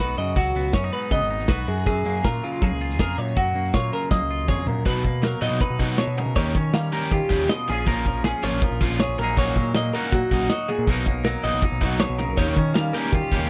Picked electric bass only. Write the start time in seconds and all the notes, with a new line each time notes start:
0.00 B1
0.17 F#2
0.36 C#2
0.55 C#2
0.74 F#2
1.11 C#3
1.20 G#1
1.49 B1
1.68 F#2
1.86 F#2
2.06 F#2
2.24 A#2
2.62 F#3
2.71 C#2
2.99 F2
3.18 A#2
3.37 F#2
3.55 F#2
3.74 A#2
4.11 F#3
4.20 C#2
4.48 F2
4.67 A#2
4.86 B2
5.42 A#2
5.51 B2
5.70 B2
5.79 B2
6.07 B2
6.26 B2
6.36 D#2
6.55 D#3
6.73 D#3
7.11 D#3
7.30 D#2
7.69 A#1
8.43 G#1
8.53 A#1
8.71 A#1
8.81 A#1
9.08 A#1
9.18 A#1
9.56 A#2
9.75 A#2
10.12 A#2
10.31 A#1
10.78 A#2
10.87 B1
11.44 A#1
11.53 B1
11.72 B1
11.81 B1
12.09 B1
12.28 B1
12.37 D#2
12.56 D#3
12.75 D#3
13.13 D#3
13.32 D#2